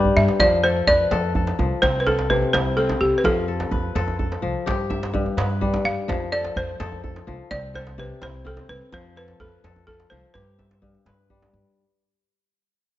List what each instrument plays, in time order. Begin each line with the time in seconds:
Already playing: kora G2 G3 G4 B4 E5
0.05 djembe bass
0.17 upright bass G2, balafon E5, djembe slap
0.28 djembe slap
0.40 upright bass F2, kora F3, balafon D5, djembe slap, djembe tone, djembe bass
0.52 djembe slap
0.64 kora A4, balafon C5
0.87 upright bass F2, kora B4, balafon D5, djembe tone, djembe bass
1.11 upright bass F2, kora A4, djembe slap
1.35 kora A4, djembe bass
1.47 djembe slap
1.59 upright bass C2, kora F3, djembe tone
1.82 upright bass C2, kora C4, balafon C5, djembe slap, djembe bass
2.00 balafon B4
2.06 kora A4, balafon A4, djembe tone
2.19 djembe slap
2.30 kora C3, balafon B4, djembe bass
2.42 djembe tone
2.53 upright bass C2, kora E4, balafon C5, djembe slap
2.66 djembe slap
2.77 kora C4, balafon A4
2.89 djembe slap, djembe tone
3.01 upright bass C2, balafon G4
3.18 balafon B4
3.24 upright bass F2, kora F3, balafon A4, djembe slap, djembe tone, djembe bass
3.37 djembe slap
3.48 kora A4
3.60 djembe slap
3.71 upright bass F2, kora B4, djembe tone, djembe bass
3.95 upright bass F2, kora A4, djembe slap
4.08 djembe tone
4.19 kora A4, djembe bass
4.32 djembe slap
4.42 upright bass C2, kora F3
4.66 upright bass G2, kora G4, djembe slap, djembe bass
4.90 kora E5, djembe tone
5.03 djembe slap
5.14 kora G2, djembe bass
5.26 djembe tone
5.37 upright bass G2, kora B4, djembe slap
5.50 djembe slap
5.61 kora G3, djembe bass
5.74 djembe slap, djembe tone
5.85 upright bass G2, balafon F5, djembe slap
6.08 upright bass F2, kora F3, djembe slap, djembe tone, djembe bass
6.21 djembe slap
6.32 kora A4, balafon D5
6.44 djembe slap
6.56 upright bass F2, kora C5, balafon C5, djembe tone, djembe bass
6.80 upright bass F2, kora A4, djembe slap
6.92 djembe tone
7.04 kora A4, djembe bass
7.16 djembe slap
7.27 upright bass C2, kora F3, djembe tone
7.51 upright bass C2, kora C4, balafon D5, djembe slap, djembe bass
7.74 kora A4, balafon C5, djembe tone
7.87 djembe slap
7.98 kora C3, balafon B4, djembe bass
8.21 upright bass C2, kora E4, balafon C5, djembe slap
8.34 djembe slap
8.45 kora C4, balafon A4, djembe bass
8.57 djembe slap, djembe tone
8.69 upright bass C2, balafon B4, djembe slap
8.92 upright bass F2, kora F3, balafon C5, djembe slap, djembe tone, djembe bass
9.05 djembe slap
9.16 kora A4, balafon B4
9.28 djembe slap
9.40 upright bass F2, balafon A4, kora B4, djembe tone, djembe bass
9.64 upright bass F2, kora A4, djembe slap
9.76 djembe slap, djembe tone
9.87 balafon A4, kora A4, djembe slap, djembe bass
10.00 djembe slap
10.10 upright bass C2, kora F3, balafon C5, djembe slap, djembe tone
10.34 upright bass G2, kora G4, balafon B4, djembe slap, djembe bass
10.47 djembe slap
10.59 kora E5, djembe tone
10.71 djembe slap
10.82 kora G2, djembe slap, djembe bass
10.95 djembe tone
11.06 upright bass G2, kora B4, djembe slap
11.30 kora G3, djembe bass
11.42 djembe slap, djembe tone
11.53 upright bass G2, djembe slap